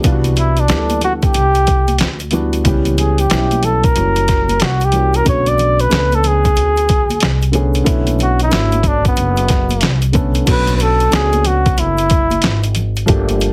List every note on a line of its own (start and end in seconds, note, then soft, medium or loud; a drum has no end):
0.03 0.66 C2 loud
0.03 0.60 E3 medium
0.03 0.60 G3 medium
0.03 0.60 B3 medium
0.03 0.61 D4 medium
0.03 0.13 F4 medium
0.03 kick loud
0.03 closed hi-hat medium
0.03 shaker medium
0.12 0.64 F#4 medium
0.24 closed hi-hat soft
0.24 high conga soft
0.24 shaker soft
0.36 0.61 E4 medium
0.36 closed hi-hat medium
0.36 low conga medium
0.36 shaker soft
0.57 1.03 D4 medium
0.57 closed hi-hat soft
0.57 shaker soft
0.68 1.31 D2 medium
0.68 1.77 E3 medium
0.68 1.78 G3 medium
0.68 1.78 B3 medium
0.68 1.78 D4 medium
0.68 0.78 G4 medium
0.68 snare loud
0.68 closed hi-hat medium
0.68 shaker medium
0.78 1.82 A4 medium
0.90 closed hi-hat soft
0.90 high conga medium
0.90 shaker soft
1.01 1.13 F#4 medium
1.01 closed hi-hat medium
1.01 low conga medium
1.01 shaker soft
1.22 2.17 G4 loud
1.22 kick medium
1.22 closed hi-hat soft
1.22 shaker soft
1.34 1.96 C2 medium
1.34 closed hi-hat medium
1.34 shaker medium
1.55 closed hi-hat medium
1.55 shaker soft
1.67 kick medium
1.67 closed hi-hat medium
1.67 shaker soft
1.87 closed hi-hat soft
1.87 high conga medium
1.87 shaker soft
1.98 2.62 D2 medium
1.98 snare loud
1.98 closed hi-hat loud
1.98 shaker soft
2.20 closed hi-hat soft
2.20 shaker soft
2.31 2.60 E3 medium
2.31 2.60 G3 medium
2.31 2.60 B3 medium
2.31 2.61 D4 medium
2.31 2.61 F#4 medium
2.31 closed hi-hat medium
2.31 low conga medium
2.31 shaker soft
2.53 closed hi-hat soft
2.53 shaker soft
2.64 3.27 C#2 loud
2.64 3.21 E3 medium
2.64 3.21 G3 medium
2.64 3.21 B3 medium
2.64 3.22 C#4 medium
2.64 3.22 G4 medium
2.64 kick loud
2.64 closed hi-hat medium
2.64 shaker medium
2.85 closed hi-hat soft
2.85 high conga soft
2.85 shaker soft
2.98 3.21 G#4 medium
2.98 closed hi-hat medium
2.98 low conga medium
2.98 shaker soft
3.18 3.66 G4 medium
3.18 closed hi-hat soft
3.18 shaker soft
3.29 3.92 B1 medium
3.29 3.93 E3 medium
3.29 3.94 G3 medium
3.29 3.95 B3 medium
3.29 3.95 C#4 medium
3.29 3.96 E4 medium
3.29 snare loud
3.29 closed hi-hat medium
3.29 shaker medium
3.51 closed hi-hat soft
3.51 high conga medium
3.51 shaker soft
3.63 3.86 A4 medium
3.63 closed hi-hat medium
3.63 low conga medium
3.63 shaker soft
3.84 4.64 A#4 medium
3.84 kick medium
3.84 closed hi-hat soft
3.84 shaker soft
3.94 4.58 F#1 medium
3.94 4.78 E3 medium
3.94 4.79 G3 medium
3.94 4.79 A#3 medium
3.94 4.80 C#4 medium
3.94 4.80 F#4 medium
3.94 closed hi-hat medium
3.94 shaker medium
4.16 closed hi-hat medium
4.16 shaker soft
4.28 kick medium
4.28 snare soft
4.28 closed hi-hat medium
4.28 shaker soft
4.49 closed hi-hat medium
4.49 high conga soft
4.49 shaker soft
4.60 5.23 C2 medium
4.60 4.86 F#4 medium
4.60 snare loud
4.60 closed hi-hat loud
4.60 shaker soft
4.80 closed hi-hat soft
4.80 shaker soft
4.84 5.18 G4 medium
4.91 5.20 E3 medium
4.91 5.21 G3 medium
4.91 5.21 A#3 medium
4.91 5.21 C#4 medium
4.91 5.22 F#4 medium
4.91 closed hi-hat medium
4.91 low conga medium
4.91 shaker soft
5.13 5.27 A#4 medium
5.13 closed hi-hat medium
5.13 shaker soft
5.24 5.88 B1 loud
5.24 5.82 C#3 medium
5.24 5.81 D3 medium
5.24 5.82 A3 medium
5.24 5.82 B3 medium
5.24 5.83 F#4 medium
5.24 kick loud
5.24 closed hi-hat medium
5.24 shaker medium
5.29 5.49 C#5 medium
5.46 5.82 D5 medium
5.46 closed hi-hat soft
5.46 high conga soft
5.46 shaker soft
5.58 closed hi-hat medium
5.58 low conga medium
5.58 shaker soft
5.79 6.16 B4 medium
5.79 closed hi-hat soft
5.79 shaker soft
5.89 6.53 C#2 medium
5.89 6.99 A3 medium
5.89 6.99 B3 medium
5.89 7.00 C#4 medium
5.89 6.99 D4 medium
5.89 6.00 G#4 medium
5.89 snare loud
5.89 closed hi-hat medium
5.89 shaker medium
5.99 7.04 B4 medium
6.12 6.29 A4 loud
6.12 closed hi-hat soft
6.12 high conga medium
6.12 shaker soft
6.23 7.56 G#4 medium
6.23 closed hi-hat medium
6.23 low conga medium
6.23 shaker soft
6.44 kick medium
6.44 closed hi-hat soft
6.44 shaker soft
6.56 7.18 D2 medium
6.56 closed hi-hat medium
6.56 shaker medium
6.76 closed hi-hat medium
6.76 shaker soft
6.88 kick loud
6.88 closed hi-hat medium
6.88 shaker soft
7.10 closed hi-hat medium
7.10 high conga soft
7.10 shaker soft
7.20 7.84 C2 medium
7.20 snare loud
7.20 closed hi-hat loud
7.20 shaker soft
7.41 closed hi-hat soft
7.41 shaker soft
7.52 7.81 D3 medium
7.52 7.82 A3 medium
7.52 7.82 B3 medium
7.52 7.82 C#4 medium
7.52 7.83 G#4 medium
7.52 closed hi-hat medium
7.52 low conga medium
7.52 shaker soft
7.74 closed hi-hat soft
7.74 shaker soft
7.84 8.49 B1 loud
7.84 8.41 D3 medium
7.84 8.42 A3 medium
7.84 8.42 B3 medium
7.84 8.43 C#4 medium
7.84 8.43 E4 medium
7.84 kick loud
7.84 closed hi-hat medium
7.84 shaker medium
8.07 closed hi-hat soft
8.07 high conga soft
8.07 shaker soft
8.19 8.40 F#4 medium
8.19 closed hi-hat medium
8.19 low conga soft
8.19 shaker soft
8.39 8.89 E4 medium
8.39 closed hi-hat soft
8.39 shaker soft
8.49 9.14 G#1 medium
8.49 9.59 D3 medium
8.49 9.60 A3 medium
8.49 9.60 B3 medium
8.49 9.60 C#4 medium
8.49 9.60 F#4 medium
8.49 closed hi-hat medium
8.49 shaker medium
8.53 snare loud
8.72 closed hi-hat soft
8.72 high conga medium
8.72 shaker soft
8.83 kick medium
8.83 closed hi-hat medium
8.83 low conga medium
8.83 shaker soft
8.87 9.06 D4 medium
9.05 10.00 B3 medium
9.05 kick medium
9.05 closed hi-hat soft
9.05 shaker soft
9.16 9.79 F#1 medium
9.16 closed hi-hat medium
9.16 shaker medium
9.36 closed hi-hat medium
9.36 shaker soft
9.48 kick medium
9.48 snare soft
9.48 closed hi-hat medium
9.48 shaker soft
9.69 closed hi-hat medium
9.69 high conga soft
9.69 shaker soft
9.81 10.44 C2 medium
9.81 snare loud
9.81 closed hi-hat medium
9.81 shaker soft
10.02 closed hi-hat soft
10.02 shaker soft
10.12 10.42 D3 medium
10.12 10.42 A3 medium
10.12 10.42 B3 medium
10.12 10.43 C#4 medium
10.12 10.43 A4 medium
10.12 kick medium
10.12 closed hi-hat medium
10.12 low conga medium
10.12 shaker soft
10.34 closed hi-hat soft
10.34 shaker soft
10.45 11.09 B1 loud
10.45 11.02 D3 medium
10.45 11.03 A3 medium
10.45 11.03 B3 medium
10.45 11.04 C#4 medium
10.45 11.04 F#4 medium
10.45 kick loud
10.45 closed hi-hat loud
10.45 crash loud
10.45 shaker medium
10.51 10.75 B4 medium
10.67 closed hi-hat soft
10.67 high conga soft
10.67 shaker soft
10.77 10.83 B4 medium
10.77 closed hi-hat medium
10.77 shaker soft
10.82 11.13 A4 medium
11.00 closed hi-hat soft
11.00 shaker soft
11.10 11.75 C#2 medium
11.10 12.20 A3 medium
11.10 12.21 B3 medium
11.10 12.21 C#4 medium
11.10 12.20 D4 medium
11.10 12.22 F#4 medium
11.10 snare loud
11.10 closed hi-hat medium
11.10 shaker medium
11.15 11.48 G#4 loud
11.33 closed hi-hat soft
11.33 high conga medium
11.33 shaker soft
11.45 11.81 F#4 medium
11.45 closed hi-hat medium
11.45 low conga medium
11.45 shaker soft
11.66 kick medium
11.66 closed hi-hat soft
11.66 shaker soft
11.77 12.40 F#1 medium
11.77 12.76 E4 medium
11.77 closed hi-hat medium
11.77 shaker medium
11.97 closed hi-hat soft
11.97 shaker soft
12.09 kick medium
12.09 closed hi-hat medium
12.09 shaker soft
12.30 closed hi-hat medium
12.30 high conga medium
12.30 shaker soft
12.42 13.05 G#1 medium
12.42 snare loud
12.42 closed hi-hat loud
12.42 shaker soft
12.63 closed hi-hat soft
12.63 shaker soft
12.75 closed hi-hat medium
12.75 low conga medium
12.75 shaker soft
12.96 closed hi-hat soft
12.96 shaker soft
13.06 13.53 G1 loud
13.06 13.53 F3 medium
13.06 13.53 A3 medium
13.06 13.53 A#3 medium
13.06 13.53 D4 medium
13.06 13.53 G4 loud
13.06 kick loud
13.06 closed hi-hat loud
13.06 shaker medium
13.29 closed hi-hat soft
13.29 high conga soft
13.29 shaker soft
13.40 closed hi-hat medium
13.40 shaker soft